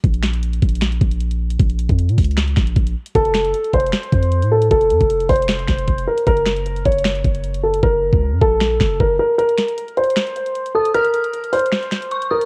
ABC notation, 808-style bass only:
X:1
M:4/4
L:1/16
Q:1/4=154
K:Gblyd
V:1 name="808-style bass" clef=bass
B,,,6 B,,,4 B,,,6 | B,,,3 F,,2 B,, D,,4 B,,,2 B,,,2 z2 | F,,,3 G,,, z2 F,,,2 z2 F,,3 =A,,3 | F,,,2 F,, F,,,3 F,,,4 F,,,2 F,,,2 z2 |
G,,,6 G,,,4 G,,,6 | G,,,3 D,,2 G,, B,,,4 G,,,2 G,,,2 z2 | z16 | z16 |]